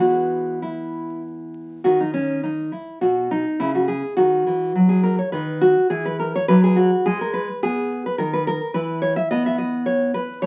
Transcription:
Already playing: E3 G#3
0.00 B3 F#4
0.62 E4
1.84 D#3 F#4
2.01 D#4
2.14 C#4
2.43 D#4
2.72 E4
3.01 B2 F#4
3.31 D#4
3.60 C#3 E4
3.75 F#4
3.88 G#4
4.17 D#3 F#4
4.47 E3
4.75 F#3
4.89 G#4
5.03 A#4
5.19 C#5
5.32 D#3 B4
5.61 F#4
5.90 E3 G#4
6.05 B4
6.19 A#4
6.35 C#5
6.48 F#3 B4
6.64 G#4
6.76 F#4
7.06 G#3 G#4
7.21 A#4
7.34 B4
7.63 B3 G#4
8.06 B4
8.18 D#3 A#4
8.33 B4
8.47 A#4
8.74 E3 E4 B4
9.02 C#5
9.16 E5
9.31 B3 D#5
9.46 E5
9.58 D#5
9.86 C#5
10.14 B4
10.42 A3 C#5

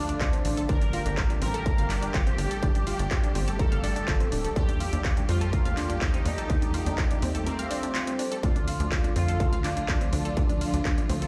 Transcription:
Already playing: D2 D3 F3 A3 D4 F4
0.09 D4 D5, closed hi-hat
0.21 F2 F4 F5, kick, clap, closed hi-hat
0.33 C4 C5, closed hi-hat
0.45 A1 D4 D5, open hi-hat
0.57 A4 A5, closed hi-hat
0.69 G1 G3 D4 G4 A#4 D5, kick, closed hi-hat
0.82 D4 D5, closed hi-hat
0.93 F4 F5, open hi-hat
1.06 G1 D4 D5, closed hi-hat
1.17 F4 F5, kick, clap, closed hi-hat
1.30 D4 D5, closed hi-hat
1.42 A1 C4 A#4 C5, open hi-hat
1.54 A4 A5, closed hi-hat
1.66 A#4 A#5, kick, closed hi-hat
1.78 G1 F5 F6, closed hi-hat
1.90 D4 D5, clap, open hi-hat
2.03 D4 D5, closed hi-hat
2.14 G1 F4 G4 F5, kick, clap, closed hi-hat
2.27 C4 C5, closed hi-hat
2.38 G1 D4 D5, open hi-hat
2.51 A4 A5, closed hi-hat
2.63 G1 D4 D5, kick, closed hi-hat
2.75 D4 D5, closed hi-hat
2.87 F4 F5, open hi-hat
2.99 G1 D4 D5, closed hi-hat
3.11 F4 F5, kick, clap, closed hi-hat
3.24 D4 D5, closed hi-hat
3.35 G1 C4 C5, open hi-hat
3.48 A4 A5, closed hi-hat
3.59 A4 A#4 A#5, kick, closed hi-hat
3.72 G1 F5 F6, closed hi-hat
3.84 D4 D5, open hi-hat
3.96 D4 D5, closed hi-hat
4.08 G1 F4 F5, kick, clap, closed hi-hat
4.20 C4 C5, closed hi-hat
4.32 D1 D4 D5, open hi-hat
4.45 A4 A5, closed hi-hat
4.56 D#2 D4 G4 D5, kick, closed hi-hat
4.69 D4 D5, closed hi-hat
4.80 F4 F5, open hi-hat
4.93 D#2 D4 D5, closed hi-hat
5.05 F4 F5, kick, clap, closed hi-hat
5.17 D4 D5, closed hi-hat
5.29 F2 C4 F4 C5, open hi-hat
5.41 A4 A5, closed hi-hat
5.53 A#4 A#5, kick, closed hi-hat
5.65 D#2 F5 F6, closed hi-hat
5.77 D4 D5, clap, open hi-hat
5.90 D4 D5, closed hi-hat
6.01 D#2 D#4 F4 F5, kick, clap, closed hi-hat
6.14 C4 C5, closed hi-hat
6.25 D#2 D4 D5, open hi-hat
6.38 A4 A5, closed hi-hat
6.50 D#2 A3 D4 D5, kick, closed hi-hat
6.62 D4 D5, closed hi-hat
6.74 F4 F5, open hi-hat
6.86 D#2 D4 D5, closed hi-hat
6.98 F4 F5, kick, clap, closed hi-hat
7.11 D4 D5, closed hi-hat
7.22 D#2 C4 C5, open hi-hat
7.35 A4 A5, closed hi-hat
7.46 C4 A#4 A#5, closed hi-hat
7.59 F5 F6, closed hi-hat
7.71 D4 D5, open hi-hat
7.83 D4 D5, closed hi-hat
7.95 F4 F5, clap, closed hi-hat
8.07 C4 C5, closed hi-hat
8.19 D4 D5, open hi-hat
8.32 A4 A5, closed hi-hat
8.43 D2 D3 F3 A3 D4 F4 D5, kick, closed hi-hat
8.56 D4 D5, closed hi-hat
8.68 F4 F5, open hi-hat
8.80 D2 D4 D5, closed hi-hat
8.92 F4 F5, kick, clap, closed hi-hat
9.04 D4 D5, closed hi-hat
9.16 F2 C4 F4 C5, open hi-hat
9.28 A4 A5, closed hi-hat
9.40 A4 A5, kick, closed hi-hat
9.53 D2 F5 F6, closed hi-hat
9.64 D4 D5, clap, open hi-hat
9.77 D4 D5, closed hi-hat
9.88 D2 D4 F4 F5, kick, clap, closed hi-hat
10.01 C4 C5, closed hi-hat
10.13 D2 D4 D5, open hi-hat
10.25 A4 A5, closed hi-hat
10.37 D2 D4 D5, kick, closed hi-hat
10.49 D4 D5, closed hi-hat
10.61 F4 F5, open hi-hat
10.74 D2 D4 D5, closed hi-hat
10.85 F4 F5, kick, clap, closed hi-hat
10.98 D4 D5, closed hi-hat
11.09 D2 C4 C5, open hi-hat
11.22 A4 A5, closed hi-hat

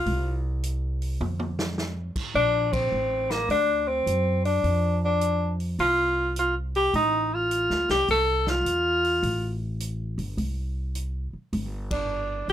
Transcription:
Already playing: F4
0.06 C2, open hi-hat
0.63 closed hi-hat
1.02 open hi-hat
1.21 F2, high tom
1.40 high tom
1.59 snare
1.78 snare
2.16 muted upright bass stroke, kick, crash
2.34 A#1 D4
2.73 C4, kick, ride
2.92 A1
3.30 A#3, snare, open hi-hat
3.49 D2 D4, open hi-hat
3.88 C4
4.06 F#2, closed hi-hat
4.45 D4, open hi-hat
4.64 F2, open hi-hat
5.05 D4
5.21 closed hi-hat
5.60 open hi-hat
5.79 C2 F4, open hi-hat
6.36 F4, closed hi-hat
6.75 G4, open hi-hat
6.94 A1 D#4, open hi-hat
7.34 F4
7.51 closed hi-hat
7.70 D2, snare
7.89 C2 G4, snare, open hi-hat
8.08 C2 A4, open hi-hat
8.47 F4, snare
8.65 E2, closed hi-hat
9.04 open hi-hat
9.23 A1, open hi-hat
9.80 closed hi-hat
10.18 G1, open hi-hat
10.37 C2, open hi-hat
10.95 closed hi-hat
11.33 muted upright bass stroke
11.53 G1, open hi-hat
11.91 D4, kick, ride
12.48 F1, open hi-hat

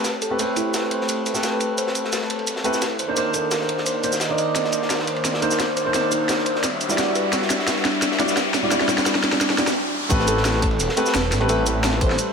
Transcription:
Already playing: A3 C4 G4 B4, riser
0.04 A5, snare, closed hi-hat, ride, shaker
0.22 A4, closed hi-hat, ride, shaker
0.30 A3 C4 G4 B4
0.39 A3 C4 G4 B4, closed hi-hat, ride, shaker
0.56 A3 C4 E4 G4 B4, closed hi-hat, ride, shaker
0.74 snare, closed hi-hat, ride, shaker
0.84 snare
0.91 C5, closed hi-hat, ride
1.01 snare
1.09 A4, closed hi-hat, ride, shaker
1.26 A4, closed hi-hat, ride, shaker
1.34 A3 C4 G4 B4, snare, shaker
1.43 B4, snare, closed hi-hat, ride, shaker
1.60 closed hi-hat, ride, shaker
1.78 C5, closed hi-hat, ride, shaker
1.87 snare
1.95 closed hi-hat, ride, shaker
2.05 snare
2.13 A5, snare, closed hi-hat, ride, shaker
2.21 snare
2.30 A4, closed hi-hat, ride
2.39 ride
2.47 closed hi-hat, ride, shaker
2.56 snare
2.64 A3 C4 E4 G4 B4, closed hi-hat, ride, shaker
2.74 snare, shaker
2.82 snare, closed hi-hat, ride, shaker
2.99 D#3 A#3 C5 D5, closed hi-hat, ride, shaker
3.08 A#3 D4 D#4 C5
3.16 A#3 D4 D#4 C5, closed hi-hat, ride, shaker
3.33 A#3 D4 D#4 A4 C5, closed hi-hat, ride, shaker
3.51 A#4, snare, closed hi-hat, ride, shaker
3.61 snare
3.69 closed hi-hat, ride
3.78 snare
3.86 C5, closed hi-hat, ride, shaker
4.03 A#3 D4 D#4 C5, closed hi-hat, ride, shaker
4.12 snare, shaker
4.20 D#5, snare, closed hi-hat, ride, shaker
4.28 A#3 D4 D#4 D5
4.38 D#5, closed hi-hat, ride, shaker
4.55 snare, closed hi-hat, ride, shaker
4.64 snare
4.72 D#4, closed hi-hat, ride, shaker
4.82 snare
4.90 snare, closed hi-hat, ride, shaker
4.99 snare
5.07 C5, closed hi-hat, ride
5.16 ride
5.24 snare, closed hi-hat, ride, shaker
5.34 snare
5.42 A#3 D4 D#4 C5, closed hi-hat, ride, shaker
5.51 snare, shaker
5.60 snare, closed hi-hat, ride, shaker
5.77 C5, closed hi-hat, ride, shaker
5.85 A#3 D4 D#4 C5
5.94 A#3 D4 D#4 C5, snare, closed hi-hat, ride, shaker
6.11 A#3 D4 D#4 C5, closed hi-hat, ride, shaker
6.29 snare, closed hi-hat, ride, shaker
6.38 snare
6.46 C5, closed hi-hat, ride
6.56 snare
6.63 G3 F#4 E5, snare, closed hi-hat, ride, shaker
6.81 D4, closed hi-hat, ride, shaker
6.89 G3 E4 F#4 D5, snare, shaker
6.98 snare, closed hi-hat, ride, shaker
7.15 B4, closed hi-hat, ride, shaker
7.32 snare, closed hi-hat, ride, shaker
7.42 snare
7.50 D4, snare, closed hi-hat, ride, shaker
7.59 snare
7.67 snare, closed hi-hat, ride, shaker
7.76 snare
7.85 D4, snare, closed hi-hat, ride
7.94 ride
8.02 snare, closed hi-hat, ride, shaker
8.12 snare
8.19 G3 D4 E4 F#4 D5, snare, closed hi-hat, ride, shaker
8.28 snare, shaker
8.36 snare, closed hi-hat, ride, shaker
8.54 D4, snare, closed hi-hat, ride, shaker
8.62 G3 E4 F#4 D5
8.71 G3 D4 E4 F#4 D5, snare, closed hi-hat, ride, shaker
8.80 snare
8.88 G3 D4 E4 F#4 D5, snare, closed hi-hat, ride, shaker
8.98 snare, shaker
9.06 D4, snare, closed hi-hat, ride, shaker
9.15 snare
9.24 D4, snare, closed hi-hat, ride
9.32 snare
9.41 D4, snare, closed hi-hat, ride, shaker
9.50 snare
9.58 G3 D4 E4 F#4 D5, snare, closed hi-hat, ride, shaker
9.67 snare, shaker
10.09 A1 G3 A3 C4 G4 B4, kick, closed hi-hat, ride, shaker
10.20 snare
10.28 A4, closed hi-hat, ride, shaker
10.37 snare
10.45 snare, closed hi-hat, ride, shaker
10.54 snare
10.62 A4, kick, open hi-hat, ride
10.71 ride
10.80 E1, closed hi-hat, ride, shaker
10.89 snare
10.96 A3 C4 G4 B4, closed hi-hat, ride, shaker
11.06 snare, shaker
11.14 E1 A4, snare, closed hi-hat, ride, shaker
11.32 A1, snare, open hi-hat, ride, shaker
11.40 A3 C4 G4 B4, snare
11.48 A1 A3 C4 G4 B4 E5, closed hi-hat, ride, shaker
11.65 A3 C4 G4 B4, closed hi-hat, ride, shaker
11.84 A4, snare, closed hi-hat, ride, shaker
11.92 snare
12.01 C5, kick, open hi-hat, ride
12.10 snare
12.18 closed hi-hat, ride, shaker

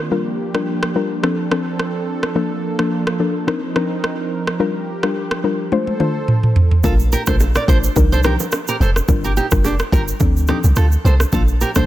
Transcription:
Already playing: D#3 A#3 C4 D4
0.11 F3 G3 D4 F4 G4 A#4
0.54 G3 D4 F4 A#4, cross-stick
0.83 cross-stick
0.95 G3 D4 F4 A#4
1.23 F3 C4 D4 A4, cross-stick
1.51 F3 C4 D4 A4, cross-stick
1.80 cross-stick
2.23 cross-stick
2.35 F3 A#3 D4 A4
2.79 F3 A#3 D4 A4, cross-stick
3.07 cross-stick
3.19 F3 A#3 D4 A4
3.47 F3 C4 D4 D#4 A#4, cross-stick
3.76 F3 C4 D4 D#4 A#4, cross-stick
4.04 cross-stick
4.47 cross-stick
4.60 G3 D4 F4 G4 A#4
5.03 G3 D4 F4 A#4, cross-stick
5.31 cross-stick
5.44 G3 D4 F4 A#4
5.72 A3 D4 F4 A4 C5, high tom
5.87 high tom
6.00 A3 D4 F4 C5, mid tom
6.28 mid tom
6.43 mid tom
6.56 floor tom
6.71 floor tom
6.84 A#1 A3 D4 F4 A4 A#4, kick, low conga, shaker
7.00 shaker
7.12 G4 A#4, shaker
7.27 A#1 A3 D4 F4 A4 A#4 C5, kick, cross-stick, shaker
7.40 high bongo, shaker
7.55 A#4 D5, cross-stick, shaker
7.68 A1 A3 D4 F4 A4 A#4 C5, kick, shaker
7.84 shaker
7.96 C2 F3 D4 D#4 A#4, kick, high bongo, low conga, shaker
8.12 A4 C5, shaker
8.23 F3 D4 D#4 G4 A#4, cross-stick, low conga, shaker
8.40 low bongo, shaker
8.52 cross-stick, high bongo, shaker
8.68 G4 A#4, shaker
8.80 F1 A4 C5, low bongo, shaker
8.96 cross-stick, high bongo, shaker
9.08 G1 G3 D4 F4 A#4, kick, low conga, shaker
9.24 G4 A#4, shaker
9.37 D#4 G4, shaker
9.51 F1 G3 D4 F4 A#4, kick, cross-stick, shaker
9.64 D4 G4, high bongo, shaker
9.79 cross-stick, shaker
9.92 G1 G3 D4 F4 G4 A#4, kick, shaker
10.08 shaker
10.20 D2 F3 C4 D4 A4, kick, high bongo, low conga, shaker
10.37 shaker
10.47 F3 C4 D4 D#4 G4 A4, cross-stick, low conga, shaker
10.64 C2, low bongo, shaker
10.76 D2 F4 A4, cross-stick, high bongo, shaker
10.92 shaker
11.05 C2 A4 C5, low bongo, shaker
11.20 cross-stick, high bongo, shaker
11.33 A#1 F3 A#3 D4 F4 A4, kick, low conga, shaker
11.48 shaker
11.61 G4 A#4, shaker
11.75 A#1 F3 A#3 D4 A4 C5, kick, cross-stick, shaker

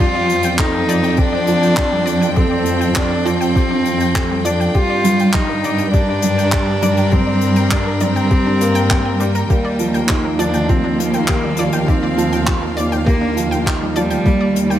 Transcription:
Already playing: C4 D5 G5
0.00 F2 F3 F4 G4
0.15 D5
0.30 closed hi-hat
0.43 G5, closed hi-hat
0.58 A3 D#4 G4, kick, clap
0.74 A4
0.87 F3 A4 D5, closed hi-hat
1.03 G5, closed hi-hat
1.17 C4 D4 G4, kick, closed hi-hat
1.33 D4
1.47 F3, closed hi-hat
1.62 G5, closed hi-hat
1.77 G4, kick, clap
1.92 G3
2.06 D5, closed hi-hat
2.21 G5, closed hi-hat
2.36 A3 C4 G4, kick, closed hi-hat
2.51 D5
2.66 F3, closed hi-hat
2.81 G5, closed hi-hat
2.95 C4 D4 G4, kick, clap
3.11 A4
3.25 F3 C4 D5, closed hi-hat
3.41 G5, closed hi-hat
3.55 F3 G4, kick, closed hi-hat
3.71 D4
3.85 closed hi-hat
4.00 G5, closed hi-hat
4.14 A3 G4, kick, clap
4.31 G3
4.44 F3 D4 D5, closed hi-hat
4.60 G5, closed hi-hat
4.74 G2 G3 F4 G4, kick, closed hi-hat
4.90 D5
5.00 D5
5.04 G3, closed hi-hat
5.19 G5, closed hi-hat
5.33 G3 D#4 G4, kick, clap, closed hi-hat
5.49 A#4
5.59 A#4
5.64 D5, closed hi-hat
5.78 G5, closed hi-hat
5.93 D4 G4, kick, closed hi-hat
6.09 D4
6.22 G3, closed hi-hat
6.38 G5, closed hi-hat
6.52 G4, kick, clap
6.68 G3
6.82 G3 D5, closed hi-hat
6.97 G5, closed hi-hat
7.11 G3 C4 G4, kick, closed hi-hat
7.27 D5
7.41 closed hi-hat
7.56 G5, closed hi-hat
7.71 D4 G4, kick, clap
7.86 A#4
8.00 G3 C4 D5, closed hi-hat
8.16 G5, closed hi-hat
8.31 G4, kick, closed hi-hat
8.46 D4
8.61 A#3, closed hi-hat
8.75 G5, closed hi-hat
8.90 G4 G5, kick, clap
9.05 G5
9.20 G3 G4, closed hi-hat
9.35 A#4, closed hi-hat
9.50 D#2 D#3 G3 A#3 G4, kick, closed hi-hat
9.65 D5
9.79 F3 F4, closed hi-hat
9.94 A#3 G5, closed hi-hat
10.09 D#4 G4, kick, clap
10.24 A#4
10.39 F3 D4 D5 F5, closed hi-hat
10.53 G5, closed hi-hat
10.68 F3 C4 G4, kick, closed hi-hat
10.84 D4
10.99 A#3, closed hi-hat
11.13 G5, closed hi-hat
11.28 A#3 G4, kick, clap
11.44 G3
11.57 F3 D5, closed hi-hat
11.72 G5, closed hi-hat
11.88 C4 D#4 G4, kick, closed hi-hat
12.03 D5
12.18 F3, closed hi-hat
12.32 G5, closed hi-hat
12.47 F3 G4, kick, clap
12.62 A#4
12.77 D5, closed hi-hat
12.92 G5, closed hi-hat
13.05 A#3 G4, kick, closed hi-hat
13.21 D4
13.36 F3, closed hi-hat
13.51 G5, closed hi-hat
13.66 D#4 G4, kick, clap, closed hi-hat
13.81 G3
13.95 F3 G3 D5, closed hi-hat
14.10 G5, closed hi-hat
14.26 D#2 G3 G4, kick, closed hi-hat
14.41 D5
14.56 closed hi-hat
14.67 G3 G5, closed hi-hat

